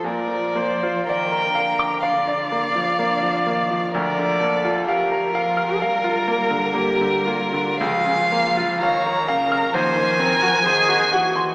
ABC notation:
X:1
M:4/4
L:1/16
Q:1/4=63
K:Bb
V:1 name="Violin"
d4 g4 f8 | d4 B12 | [K:Bbm] f4 b4 a8 |]
V:2 name="Viola"
B2 c2 B4 d8 | B2 A2 G2 F2 B4 G2 F2- | [K:Bbm] F4 d2 B2 c2 B2 A2 G2 |]
V:3 name="Grand piano"
B,, F, B, F d B f d' f d B, F, B, F, B, F, | D,, D, B, F f B f f' f F B, D, B, D, B, D, | [K:Bbm] D,, D, B, F f B f f' E,, E, C G c G g c' |]
V:4 name="Cello" clef=bass
F,4 E,2 D,6 D,2 E,2 | F,4 F,4 G,8 | [K:Bbm] F,4 E,2 D,2 F,4 E,2 =E,2 |]